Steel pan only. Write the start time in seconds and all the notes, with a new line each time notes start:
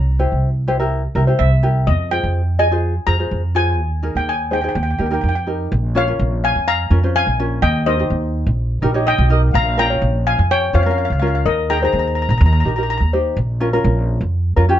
Already playing: A#5
1.39 E5
1.87 D#5
2.11 G5
2.59 G#5
3.07 A#5
3.56 G#5
4.17 G5
4.29 G#5
4.53 G5
4.61 G5
4.69 G5
4.75 G5
4.83 G5
4.91 G5
4.99 G5
5.06 G5
5.14 G5
5.21 G5
5.29 G5
5.35 G5
5.96 C#5 F5
6.44 F5 G#5
6.68 F5 A#5
7.16 F5 G#5
7.62 D#5 G5
7.86 C5 D#5
9.07 D#5 G5
9.55 F5 A#5
9.79 G5 A#5
10.27 F5 G#5
10.51 C#5 G5
10.75 C#5 F5
10.83 F5
10.91 F5
10.98 F5
11.05 F5
11.12 F5
11.20 F5
11.27 F5
11.35 F5
11.46 A#4 D#5
11.70 G5 A#5
11.78 A#5
11.85 A#5
11.93 A#5
11.99 A#5
12.07 A#5
12.15 A#5
12.22 A#5
12.31 A#5
12.38 A#5
12.46 A#5
12.53 A#5
12.60 A#5
12.68 A#5
12.76 A#5
12.83 A#5
12.90 A#5
12.98 A#5